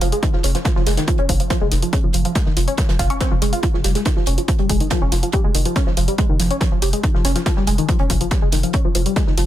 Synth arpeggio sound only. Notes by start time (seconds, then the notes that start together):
0.01 F3
0.12 G#3
0.23 D#3
0.34 F3
0.44 C#4
0.55 F3
0.65 F3
0.76 F3
0.87 G#3
0.97 D#3
1.08 F3
1.19 C#4
1.29 F3
1.40 F3
1.50 F3
1.61 G#3
1.72 D#3
1.83 F3
1.93 C#4
2.04 F3
2.14 F3
2.25 F3
2.35 G#3
2.46 D#3
2.57 F3
2.68 C#4
2.78 F3
2.89 F3
2.99 F4
3.10 C#4
3.20 C4
3.31 F3
3.42 G#3
3.53 F4
3.63 F3
3.74 F3
3.84 G3
3.95 G#3
4.06 D#3
4.17 F3
4.27 C#4
4.38 F3
4.48 F3
4.59 G3
4.70 G#3
4.80 D#3
4.91 F3
5.02 C#4
5.12 F3
5.23 F3
5.33 G3
5.44 G#3
5.55 D#3
5.66 F3
5.76 C#4
5.87 F3
5.97 F3
6.08 G3
6.18 G#3
6.29 D#3
6.40 F3
6.51 C#4
6.61 F3
6.72 F3
6.82 G3
6.93 G#3
7.04 D#3
7.14 F3
7.25 C#4
7.36 F3
7.46 F3
7.57 G3
7.67 G#3
7.78 D#3
7.89 F3
8.00 C#4
8.10 F3
8.21 F3
8.31 G3
8.42 G#3
8.52 D#3
8.63 F3
8.74 C#4
8.85 F3
8.95 F3
9.06 G3
9.16 G#3
9.27 D#3
9.38 F3